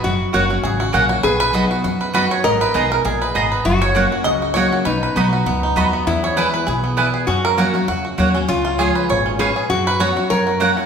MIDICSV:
0, 0, Header, 1, 6, 480
1, 0, Start_track
1, 0, Tempo, 302115
1, 52, Time_signature, 4, 2, 24, 8
1, 17253, End_track
2, 0, Start_track
2, 0, Title_t, "Mandolin"
2, 0, Program_c, 0, 25
2, 520, Note_on_c, 0, 58, 75
2, 525, Note_on_c, 0, 66, 84
2, 536, Note_on_c, 0, 73, 86
2, 543, Note_on_c, 0, 78, 99
2, 682, Note_off_c, 0, 58, 0
2, 684, Note_off_c, 0, 66, 0
2, 690, Note_off_c, 0, 73, 0
2, 693, Note_off_c, 0, 78, 0
2, 1471, Note_on_c, 0, 58, 97
2, 1480, Note_on_c, 0, 66, 98
2, 1489, Note_on_c, 0, 73, 84
2, 1494, Note_on_c, 0, 78, 102
2, 1637, Note_off_c, 0, 58, 0
2, 1641, Note_off_c, 0, 66, 0
2, 1646, Note_off_c, 0, 73, 0
2, 1648, Note_off_c, 0, 78, 0
2, 2439, Note_on_c, 0, 59, 76
2, 2446, Note_on_c, 0, 66, 92
2, 2455, Note_on_c, 0, 75, 94
2, 2460, Note_on_c, 0, 83, 87
2, 2600, Note_off_c, 0, 59, 0
2, 2603, Note_off_c, 0, 66, 0
2, 2608, Note_off_c, 0, 75, 0
2, 2610, Note_off_c, 0, 83, 0
2, 3392, Note_on_c, 0, 59, 93
2, 3403, Note_on_c, 0, 66, 102
2, 3408, Note_on_c, 0, 75, 101
2, 3413, Note_on_c, 0, 83, 110
2, 3555, Note_off_c, 0, 59, 0
2, 3561, Note_off_c, 0, 66, 0
2, 3563, Note_off_c, 0, 75, 0
2, 3566, Note_off_c, 0, 83, 0
2, 4354, Note_on_c, 0, 59, 100
2, 4365, Note_on_c, 0, 68, 94
2, 4370, Note_on_c, 0, 75, 94
2, 4377, Note_on_c, 0, 82, 96
2, 4516, Note_off_c, 0, 59, 0
2, 4521, Note_off_c, 0, 68, 0
2, 4523, Note_off_c, 0, 75, 0
2, 4527, Note_off_c, 0, 82, 0
2, 5319, Note_on_c, 0, 59, 91
2, 5325, Note_on_c, 0, 68, 95
2, 5333, Note_on_c, 0, 75, 100
2, 5340, Note_on_c, 0, 82, 108
2, 5477, Note_off_c, 0, 59, 0
2, 5480, Note_off_c, 0, 68, 0
2, 5484, Note_off_c, 0, 75, 0
2, 5488, Note_off_c, 0, 82, 0
2, 6271, Note_on_c, 0, 58, 88
2, 6278, Note_on_c, 0, 66, 89
2, 6287, Note_on_c, 0, 73, 97
2, 6294, Note_on_c, 0, 78, 96
2, 6432, Note_off_c, 0, 58, 0
2, 6436, Note_off_c, 0, 66, 0
2, 6440, Note_off_c, 0, 73, 0
2, 6444, Note_off_c, 0, 78, 0
2, 7239, Note_on_c, 0, 58, 87
2, 7246, Note_on_c, 0, 66, 101
2, 7255, Note_on_c, 0, 73, 99
2, 7258, Note_on_c, 0, 78, 109
2, 7395, Note_off_c, 0, 58, 0
2, 7399, Note_off_c, 0, 66, 0
2, 7403, Note_off_c, 0, 73, 0
2, 7405, Note_off_c, 0, 78, 0
2, 8198, Note_on_c, 0, 59, 92
2, 8211, Note_on_c, 0, 66, 87
2, 8216, Note_on_c, 0, 75, 96
2, 8221, Note_on_c, 0, 83, 106
2, 8354, Note_off_c, 0, 59, 0
2, 8361, Note_off_c, 0, 66, 0
2, 8363, Note_off_c, 0, 75, 0
2, 8366, Note_off_c, 0, 83, 0
2, 9150, Note_on_c, 0, 59, 87
2, 9156, Note_on_c, 0, 66, 87
2, 9162, Note_on_c, 0, 75, 104
2, 9169, Note_on_c, 0, 83, 118
2, 9310, Note_off_c, 0, 59, 0
2, 9313, Note_off_c, 0, 66, 0
2, 9316, Note_off_c, 0, 75, 0
2, 9320, Note_off_c, 0, 83, 0
2, 10112, Note_on_c, 0, 59, 86
2, 10118, Note_on_c, 0, 64, 103
2, 10128, Note_on_c, 0, 71, 91
2, 10133, Note_on_c, 0, 80, 107
2, 10271, Note_off_c, 0, 59, 0
2, 10274, Note_off_c, 0, 64, 0
2, 10279, Note_off_c, 0, 71, 0
2, 10282, Note_off_c, 0, 80, 0
2, 11069, Note_on_c, 0, 59, 94
2, 11076, Note_on_c, 0, 64, 96
2, 11082, Note_on_c, 0, 71, 102
2, 11090, Note_on_c, 0, 80, 106
2, 11230, Note_off_c, 0, 59, 0
2, 11233, Note_off_c, 0, 64, 0
2, 11236, Note_off_c, 0, 71, 0
2, 11240, Note_off_c, 0, 80, 0
2, 12032, Note_on_c, 0, 58, 92
2, 12041, Note_on_c, 0, 66, 97
2, 12046, Note_on_c, 0, 73, 85
2, 12055, Note_on_c, 0, 78, 97
2, 12192, Note_off_c, 0, 58, 0
2, 12196, Note_off_c, 0, 66, 0
2, 12199, Note_off_c, 0, 73, 0
2, 12203, Note_off_c, 0, 78, 0
2, 12992, Note_on_c, 0, 58, 81
2, 13001, Note_on_c, 0, 66, 95
2, 13005, Note_on_c, 0, 73, 98
2, 13015, Note_on_c, 0, 78, 99
2, 13153, Note_off_c, 0, 58, 0
2, 13157, Note_off_c, 0, 66, 0
2, 13159, Note_off_c, 0, 73, 0
2, 13164, Note_off_c, 0, 78, 0
2, 13956, Note_on_c, 0, 61, 95
2, 13967, Note_on_c, 0, 65, 95
2, 13973, Note_on_c, 0, 73, 96
2, 13979, Note_on_c, 0, 80, 100
2, 14116, Note_off_c, 0, 61, 0
2, 14121, Note_off_c, 0, 65, 0
2, 14124, Note_off_c, 0, 73, 0
2, 14127, Note_off_c, 0, 80, 0
2, 14922, Note_on_c, 0, 61, 95
2, 14931, Note_on_c, 0, 65, 94
2, 14939, Note_on_c, 0, 73, 101
2, 14946, Note_on_c, 0, 80, 102
2, 15080, Note_off_c, 0, 61, 0
2, 15084, Note_off_c, 0, 65, 0
2, 15088, Note_off_c, 0, 73, 0
2, 15091, Note_off_c, 0, 80, 0
2, 15881, Note_on_c, 0, 59, 84
2, 15891, Note_on_c, 0, 66, 90
2, 15895, Note_on_c, 0, 73, 104
2, 15902, Note_on_c, 0, 78, 93
2, 16041, Note_off_c, 0, 59, 0
2, 16045, Note_off_c, 0, 66, 0
2, 16048, Note_off_c, 0, 73, 0
2, 16051, Note_off_c, 0, 78, 0
2, 16840, Note_on_c, 0, 58, 93
2, 16847, Note_on_c, 0, 66, 92
2, 16854, Note_on_c, 0, 73, 115
2, 16861, Note_on_c, 0, 78, 112
2, 17002, Note_off_c, 0, 58, 0
2, 17005, Note_off_c, 0, 66, 0
2, 17009, Note_off_c, 0, 73, 0
2, 17012, Note_off_c, 0, 78, 0
2, 17253, End_track
3, 0, Start_track
3, 0, Title_t, "Five-string banjo"
3, 0, Program_c, 1, 105
3, 0, Note_on_c, 1, 66, 69
3, 60, Note_off_c, 1, 66, 0
3, 60, Note_on_c, 1, 66, 62
3, 531, Note_off_c, 1, 66, 0
3, 537, Note_on_c, 1, 66, 56
3, 782, Note_off_c, 1, 66, 0
3, 801, Note_on_c, 1, 66, 51
3, 1009, Note_on_c, 1, 68, 83
3, 1251, Note_off_c, 1, 66, 0
3, 1254, Note_off_c, 1, 68, 0
3, 1270, Note_on_c, 1, 66, 82
3, 1491, Note_on_c, 1, 61, 77
3, 1717, Note_off_c, 1, 66, 0
3, 1737, Note_on_c, 1, 66, 83
3, 1960, Note_on_c, 1, 71, 103
3, 1968, Note_off_c, 1, 66, 0
3, 1970, Note_off_c, 1, 61, 0
3, 2206, Note_off_c, 1, 71, 0
3, 2225, Note_on_c, 1, 71, 106
3, 2446, Note_on_c, 1, 66, 52
3, 2695, Note_off_c, 1, 66, 0
3, 2714, Note_on_c, 1, 66, 72
3, 2722, Note_off_c, 1, 71, 0
3, 2907, Note_off_c, 1, 66, 0
3, 2926, Note_on_c, 1, 66, 65
3, 3190, Note_on_c, 1, 71, 63
3, 3392, Note_off_c, 1, 71, 0
3, 3411, Note_on_c, 1, 71, 100
3, 3616, Note_off_c, 1, 66, 0
3, 3653, Note_off_c, 1, 71, 0
3, 3674, Note_on_c, 1, 73, 92
3, 3871, Note_off_c, 1, 73, 0
3, 3877, Note_on_c, 1, 75, 109
3, 4126, Note_off_c, 1, 75, 0
3, 4148, Note_on_c, 1, 71, 92
3, 4368, Note_on_c, 1, 63, 60
3, 4594, Note_off_c, 1, 71, 0
3, 4634, Note_on_c, 1, 70, 89
3, 4845, Note_off_c, 1, 70, 0
3, 4851, Note_on_c, 1, 68, 85
3, 5056, Note_off_c, 1, 63, 0
3, 5110, Note_on_c, 1, 71, 74
3, 5118, Note_off_c, 1, 68, 0
3, 5309, Note_off_c, 1, 71, 0
3, 5325, Note_on_c, 1, 59, 77
3, 5587, Note_on_c, 1, 71, 62
3, 5803, Note_off_c, 1, 59, 0
3, 5803, Note_off_c, 1, 71, 0
3, 5803, Note_on_c, 1, 66, 57
3, 6063, Note_on_c, 1, 73, 97
3, 6280, Note_off_c, 1, 66, 0
3, 6287, Note_on_c, 1, 66, 58
3, 6528, Note_off_c, 1, 66, 0
3, 6541, Note_off_c, 1, 73, 0
3, 6547, Note_on_c, 1, 66, 64
3, 6741, Note_on_c, 1, 75, 106
3, 7005, Note_off_c, 1, 66, 0
3, 7024, Note_on_c, 1, 66, 61
3, 7204, Note_off_c, 1, 75, 0
3, 7210, Note_on_c, 1, 73, 101
3, 7487, Note_off_c, 1, 66, 0
3, 7506, Note_on_c, 1, 66, 67
3, 7709, Note_on_c, 1, 71, 88
3, 7719, Note_off_c, 1, 73, 0
3, 7721, Note_off_c, 1, 66, 0
3, 7971, Note_off_c, 1, 71, 0
3, 7990, Note_on_c, 1, 71, 68
3, 8201, Note_on_c, 1, 63, 60
3, 8464, Note_on_c, 1, 66, 61
3, 8638, Note_off_c, 1, 71, 0
3, 8683, Note_on_c, 1, 59, 67
3, 8889, Note_off_c, 1, 63, 0
3, 8948, Note_on_c, 1, 63, 59
3, 9116, Note_off_c, 1, 66, 0
3, 9167, Note_on_c, 1, 66, 66
3, 9371, Note_off_c, 1, 59, 0
3, 9426, Note_on_c, 1, 59, 63
3, 9597, Note_off_c, 1, 63, 0
3, 9622, Note_off_c, 1, 59, 0
3, 9641, Note_on_c, 1, 59, 67
3, 9642, Note_off_c, 1, 66, 0
3, 9911, Note_on_c, 1, 73, 97
3, 10121, Note_on_c, 1, 71, 97
3, 10129, Note_off_c, 1, 73, 0
3, 10330, Note_off_c, 1, 59, 0
3, 10367, Note_off_c, 1, 71, 0
3, 10386, Note_on_c, 1, 71, 61
3, 10592, Note_on_c, 1, 68, 80
3, 10840, Note_off_c, 1, 68, 0
3, 10861, Note_on_c, 1, 59, 61
3, 11037, Note_off_c, 1, 71, 0
3, 11081, Note_on_c, 1, 71, 63
3, 11340, Note_on_c, 1, 68, 56
3, 11514, Note_off_c, 1, 59, 0
3, 11558, Note_off_c, 1, 68, 0
3, 11560, Note_off_c, 1, 71, 0
3, 11564, Note_on_c, 1, 61, 65
3, 11831, Note_on_c, 1, 70, 103
3, 12041, Note_off_c, 1, 70, 0
3, 12047, Note_on_c, 1, 66, 88
3, 12291, Note_off_c, 1, 66, 0
3, 12310, Note_on_c, 1, 66, 55
3, 12504, Note_off_c, 1, 66, 0
3, 12524, Note_on_c, 1, 66, 77
3, 12767, Note_off_c, 1, 66, 0
3, 12786, Note_on_c, 1, 66, 62
3, 12980, Note_off_c, 1, 66, 0
3, 12999, Note_on_c, 1, 66, 61
3, 13253, Note_off_c, 1, 61, 0
3, 13259, Note_on_c, 1, 61, 66
3, 13474, Note_off_c, 1, 61, 0
3, 13480, Note_off_c, 1, 66, 0
3, 13480, Note_on_c, 1, 61, 73
3, 13738, Note_on_c, 1, 65, 80
3, 13963, Note_on_c, 1, 68, 97
3, 13965, Note_off_c, 1, 65, 0
3, 14226, Note_on_c, 1, 71, 62
3, 14273, Note_off_c, 1, 61, 0
3, 14451, Note_off_c, 1, 68, 0
3, 14457, Note_on_c, 1, 73, 97
3, 14696, Note_off_c, 1, 73, 0
3, 14708, Note_on_c, 1, 61, 59
3, 14880, Note_off_c, 1, 71, 0
3, 14928, Note_on_c, 1, 71, 69
3, 15190, Note_on_c, 1, 68, 63
3, 15362, Note_off_c, 1, 61, 0
3, 15404, Note_off_c, 1, 68, 0
3, 15407, Note_off_c, 1, 71, 0
3, 15410, Note_on_c, 1, 66, 65
3, 15682, Note_on_c, 1, 71, 93
3, 15892, Note_on_c, 1, 73, 107
3, 15899, Note_off_c, 1, 71, 0
3, 16100, Note_off_c, 1, 66, 0
3, 16155, Note_on_c, 1, 66, 58
3, 16337, Note_off_c, 1, 73, 0
3, 16359, Note_off_c, 1, 66, 0
3, 16365, Note_on_c, 1, 73, 86
3, 16612, Note_off_c, 1, 73, 0
3, 16630, Note_on_c, 1, 66, 64
3, 16828, Note_off_c, 1, 66, 0
3, 16847, Note_on_c, 1, 66, 65
3, 17093, Note_off_c, 1, 66, 0
3, 17112, Note_on_c, 1, 66, 60
3, 17253, Note_off_c, 1, 66, 0
3, 17253, End_track
4, 0, Start_track
4, 0, Title_t, "Resonator guitar played with a steel bar"
4, 0, Program_c, 2, 25
4, 63, Note_on_c, 2, 66, 91
4, 517, Note_off_c, 2, 66, 0
4, 536, Note_on_c, 2, 66, 92
4, 1692, Note_off_c, 2, 66, 0
4, 1965, Note_on_c, 2, 68, 110
4, 3820, Note_off_c, 2, 68, 0
4, 3877, Note_on_c, 2, 70, 99
4, 5734, Note_off_c, 2, 70, 0
4, 5803, Note_on_c, 2, 66, 99
4, 7727, Note_on_c, 2, 63, 84
4, 7777, Note_off_c, 2, 66, 0
4, 9361, Note_off_c, 2, 63, 0
4, 9642, Note_on_c, 2, 64, 97
4, 11549, Note_on_c, 2, 66, 102
4, 11618, Note_off_c, 2, 64, 0
4, 13474, Note_off_c, 2, 66, 0
4, 13481, Note_on_c, 2, 65, 111
4, 14921, Note_on_c, 2, 68, 104
4, 14967, Note_off_c, 2, 65, 0
4, 15370, Note_off_c, 2, 68, 0
4, 15405, Note_on_c, 2, 66, 100
4, 16305, Note_off_c, 2, 66, 0
4, 16367, Note_on_c, 2, 70, 111
4, 17062, Note_off_c, 2, 70, 0
4, 17253, End_track
5, 0, Start_track
5, 0, Title_t, "Steel-string acoustic guitar"
5, 0, Program_c, 3, 25
5, 67, Note_on_c, 3, 42, 87
5, 537, Note_on_c, 3, 54, 88
5, 544, Note_on_c, 3, 58, 87
5, 557, Note_on_c, 3, 61, 85
5, 563, Note_on_c, 3, 66, 89
5, 773, Note_off_c, 3, 66, 0
5, 787, Note_off_c, 3, 54, 0
5, 790, Note_off_c, 3, 58, 0
5, 792, Note_on_c, 3, 66, 61
5, 797, Note_off_c, 3, 61, 0
5, 822, Note_on_c, 3, 61, 50
5, 975, Note_off_c, 3, 42, 0
5, 1001, Note_off_c, 3, 66, 0
5, 1016, Note_off_c, 3, 61, 0
5, 1031, Note_on_c, 3, 49, 93
5, 1492, Note_on_c, 3, 54, 82
5, 1501, Note_on_c, 3, 58, 95
5, 1512, Note_on_c, 3, 61, 92
5, 1513, Note_on_c, 3, 66, 90
5, 1936, Note_off_c, 3, 49, 0
5, 1949, Note_off_c, 3, 54, 0
5, 1953, Note_off_c, 3, 58, 0
5, 1959, Note_off_c, 3, 61, 0
5, 1959, Note_off_c, 3, 66, 0
5, 1977, Note_on_c, 3, 47, 83
5, 2431, Note_on_c, 3, 54, 79
5, 2445, Note_on_c, 3, 59, 99
5, 2456, Note_on_c, 3, 63, 104
5, 2464, Note_on_c, 3, 66, 95
5, 2888, Note_off_c, 3, 47, 0
5, 2897, Note_off_c, 3, 54, 0
5, 2904, Note_off_c, 3, 59, 0
5, 2910, Note_off_c, 3, 63, 0
5, 2913, Note_off_c, 3, 66, 0
5, 2931, Note_on_c, 3, 42, 93
5, 3391, Note_on_c, 3, 54, 81
5, 3403, Note_on_c, 3, 59, 92
5, 3413, Note_on_c, 3, 63, 88
5, 3425, Note_on_c, 3, 66, 94
5, 3844, Note_off_c, 3, 42, 0
5, 3856, Note_off_c, 3, 54, 0
5, 3862, Note_off_c, 3, 59, 0
5, 3867, Note_off_c, 3, 63, 0
5, 3873, Note_off_c, 3, 66, 0
5, 3891, Note_on_c, 3, 44, 93
5, 4354, Note_on_c, 3, 56, 100
5, 4364, Note_on_c, 3, 59, 95
5, 4376, Note_on_c, 3, 63, 80
5, 4384, Note_on_c, 3, 70, 98
5, 4803, Note_off_c, 3, 44, 0
5, 4817, Note_off_c, 3, 56, 0
5, 4822, Note_off_c, 3, 59, 0
5, 4828, Note_off_c, 3, 63, 0
5, 4832, Note_off_c, 3, 70, 0
5, 4840, Note_on_c, 3, 46, 97
5, 5299, Note_off_c, 3, 46, 0
5, 5326, Note_on_c, 3, 44, 84
5, 5782, Note_off_c, 3, 44, 0
5, 5798, Note_on_c, 3, 42, 95
5, 6273, Note_on_c, 3, 54, 80
5, 6286, Note_on_c, 3, 58, 81
5, 6297, Note_on_c, 3, 61, 93
5, 6300, Note_on_c, 3, 66, 83
5, 6715, Note_off_c, 3, 42, 0
5, 6735, Note_off_c, 3, 54, 0
5, 6741, Note_off_c, 3, 58, 0
5, 6747, Note_off_c, 3, 61, 0
5, 6748, Note_off_c, 3, 66, 0
5, 6753, Note_on_c, 3, 49, 95
5, 7226, Note_on_c, 3, 54, 86
5, 7240, Note_on_c, 3, 58, 86
5, 7248, Note_on_c, 3, 61, 86
5, 7253, Note_on_c, 3, 66, 101
5, 7672, Note_off_c, 3, 49, 0
5, 7690, Note_off_c, 3, 54, 0
5, 7697, Note_off_c, 3, 58, 0
5, 7701, Note_off_c, 3, 61, 0
5, 7704, Note_off_c, 3, 66, 0
5, 7709, Note_on_c, 3, 47, 88
5, 8194, Note_on_c, 3, 54, 81
5, 8207, Note_on_c, 3, 59, 100
5, 8214, Note_on_c, 3, 63, 94
5, 8220, Note_on_c, 3, 66, 105
5, 8630, Note_off_c, 3, 47, 0
5, 8654, Note_off_c, 3, 54, 0
5, 8661, Note_off_c, 3, 59, 0
5, 8664, Note_off_c, 3, 63, 0
5, 8667, Note_off_c, 3, 66, 0
5, 8680, Note_on_c, 3, 42, 99
5, 9150, Note_on_c, 3, 54, 88
5, 9165, Note_on_c, 3, 59, 88
5, 9172, Note_on_c, 3, 63, 89
5, 9181, Note_on_c, 3, 66, 99
5, 9595, Note_off_c, 3, 42, 0
5, 9612, Note_off_c, 3, 54, 0
5, 9620, Note_off_c, 3, 59, 0
5, 9623, Note_off_c, 3, 63, 0
5, 9627, Note_off_c, 3, 66, 0
5, 9646, Note_on_c, 3, 40, 96
5, 10119, Note_on_c, 3, 52, 87
5, 10132, Note_on_c, 3, 56, 86
5, 10142, Note_on_c, 3, 59, 96
5, 10147, Note_on_c, 3, 64, 91
5, 10558, Note_off_c, 3, 40, 0
5, 10577, Note_off_c, 3, 52, 0
5, 10583, Note_off_c, 3, 56, 0
5, 10588, Note_off_c, 3, 59, 0
5, 10590, Note_off_c, 3, 64, 0
5, 10609, Note_on_c, 3, 47, 92
5, 11079, Note_on_c, 3, 40, 78
5, 11520, Note_off_c, 3, 47, 0
5, 11537, Note_off_c, 3, 40, 0
5, 11563, Note_on_c, 3, 42, 91
5, 12039, Note_on_c, 3, 54, 89
5, 12048, Note_on_c, 3, 58, 89
5, 12059, Note_on_c, 3, 61, 107
5, 12068, Note_on_c, 3, 66, 83
5, 12273, Note_off_c, 3, 66, 0
5, 12292, Note_off_c, 3, 54, 0
5, 12292, Note_on_c, 3, 66, 60
5, 12296, Note_off_c, 3, 58, 0
5, 12302, Note_off_c, 3, 61, 0
5, 12325, Note_on_c, 3, 61, 51
5, 12478, Note_off_c, 3, 42, 0
5, 12505, Note_off_c, 3, 66, 0
5, 12520, Note_on_c, 3, 49, 91
5, 12522, Note_off_c, 3, 61, 0
5, 12992, Note_on_c, 3, 54, 87
5, 13007, Note_on_c, 3, 58, 78
5, 13011, Note_on_c, 3, 61, 78
5, 13021, Note_on_c, 3, 66, 88
5, 13249, Note_off_c, 3, 54, 0
5, 13253, Note_off_c, 3, 66, 0
5, 13257, Note_off_c, 3, 58, 0
5, 13258, Note_off_c, 3, 61, 0
5, 13272, Note_on_c, 3, 66, 65
5, 13296, Note_on_c, 3, 61, 58
5, 13437, Note_off_c, 3, 49, 0
5, 13476, Note_off_c, 3, 66, 0
5, 13488, Note_off_c, 3, 61, 0
5, 13496, Note_on_c, 3, 49, 87
5, 13975, Note_on_c, 3, 53, 86
5, 13978, Note_on_c, 3, 56, 88
5, 13990, Note_on_c, 3, 61, 97
5, 14001, Note_on_c, 3, 65, 101
5, 14407, Note_off_c, 3, 49, 0
5, 14428, Note_off_c, 3, 53, 0
5, 14429, Note_off_c, 3, 56, 0
5, 14435, Note_off_c, 3, 61, 0
5, 14440, Note_off_c, 3, 65, 0
5, 14450, Note_on_c, 3, 46, 82
5, 14905, Note_off_c, 3, 46, 0
5, 14930, Note_on_c, 3, 44, 89
5, 15386, Note_off_c, 3, 44, 0
5, 15409, Note_on_c, 3, 42, 95
5, 15881, Note_on_c, 3, 54, 83
5, 15892, Note_on_c, 3, 59, 89
5, 15901, Note_on_c, 3, 61, 99
5, 15908, Note_on_c, 3, 66, 96
5, 16127, Note_off_c, 3, 66, 0
5, 16137, Note_off_c, 3, 54, 0
5, 16143, Note_off_c, 3, 59, 0
5, 16146, Note_on_c, 3, 66, 60
5, 16147, Note_off_c, 3, 61, 0
5, 16171, Note_on_c, 3, 61, 55
5, 16326, Note_off_c, 3, 42, 0
5, 16357, Note_off_c, 3, 66, 0
5, 16366, Note_on_c, 3, 42, 93
5, 16370, Note_off_c, 3, 61, 0
5, 16843, Note_on_c, 3, 54, 76
5, 16851, Note_on_c, 3, 58, 102
5, 16866, Note_on_c, 3, 61, 87
5, 16878, Note_on_c, 3, 66, 101
5, 17253, Note_off_c, 3, 42, 0
5, 17253, Note_off_c, 3, 54, 0
5, 17253, Note_off_c, 3, 58, 0
5, 17253, Note_off_c, 3, 61, 0
5, 17253, Note_off_c, 3, 66, 0
5, 17253, End_track
6, 0, Start_track
6, 0, Title_t, "Upright bass"
6, 0, Program_c, 4, 32
6, 65, Note_on_c, 4, 30, 98
6, 380, Note_off_c, 4, 30, 0
6, 537, Note_on_c, 4, 30, 90
6, 942, Note_off_c, 4, 30, 0
6, 1013, Note_on_c, 4, 32, 82
6, 1419, Note_off_c, 4, 32, 0
6, 1484, Note_on_c, 4, 34, 88
6, 1894, Note_off_c, 4, 34, 0
6, 1968, Note_on_c, 4, 35, 92
6, 2608, Note_off_c, 4, 35, 0
6, 2932, Note_on_c, 4, 42, 87
6, 3570, Note_off_c, 4, 42, 0
6, 3886, Note_on_c, 4, 32, 98
6, 4206, Note_off_c, 4, 32, 0
6, 4362, Note_on_c, 4, 35, 87
6, 4770, Note_off_c, 4, 35, 0
6, 4841, Note_on_c, 4, 34, 89
6, 5249, Note_off_c, 4, 34, 0
6, 5320, Note_on_c, 4, 32, 80
6, 5729, Note_off_c, 4, 32, 0
6, 5805, Note_on_c, 4, 30, 97
6, 6444, Note_off_c, 4, 30, 0
6, 6756, Note_on_c, 4, 37, 85
6, 7397, Note_off_c, 4, 37, 0
6, 7713, Note_on_c, 4, 35, 97
6, 8035, Note_off_c, 4, 35, 0
6, 8192, Note_on_c, 4, 35, 86
6, 8603, Note_off_c, 4, 35, 0
6, 8681, Note_on_c, 4, 37, 95
6, 9087, Note_off_c, 4, 37, 0
6, 9158, Note_on_c, 4, 39, 84
6, 9566, Note_off_c, 4, 39, 0
6, 9638, Note_on_c, 4, 40, 98
6, 10278, Note_off_c, 4, 40, 0
6, 10599, Note_on_c, 4, 35, 83
6, 11239, Note_off_c, 4, 35, 0
6, 11558, Note_on_c, 4, 42, 90
6, 12199, Note_off_c, 4, 42, 0
6, 12522, Note_on_c, 4, 40, 82
6, 12929, Note_off_c, 4, 40, 0
6, 13005, Note_on_c, 4, 39, 84
6, 13412, Note_off_c, 4, 39, 0
6, 13485, Note_on_c, 4, 37, 95
6, 14125, Note_off_c, 4, 37, 0
6, 14444, Note_on_c, 4, 32, 95
6, 15085, Note_off_c, 4, 32, 0
6, 15401, Note_on_c, 4, 42, 101
6, 16045, Note_off_c, 4, 42, 0
6, 16370, Note_on_c, 4, 42, 92
6, 17013, Note_off_c, 4, 42, 0
6, 17253, End_track
0, 0, End_of_file